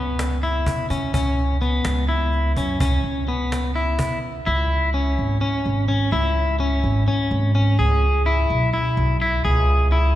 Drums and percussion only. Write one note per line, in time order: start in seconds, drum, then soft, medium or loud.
0.19 cajon slap medium
0.43 cajon slap soft
0.66 cajon bass medium
0.90 cajon bass medium
1.14 cajon bass loud
1.38 cajon slap soft
1.62 cajon slap soft
1.85 cajon slap loud
2.09 cajon slap soft
2.33 cajon slap soft
2.57 cajon bass medium
2.80 cajon bass loud
3.04 cajon slap soft
3.28 cajon slap soft
3.52 cajon slap medium
3.76 cajon slap soft
3.99 cajon bass medium
3.99 cajon slap medium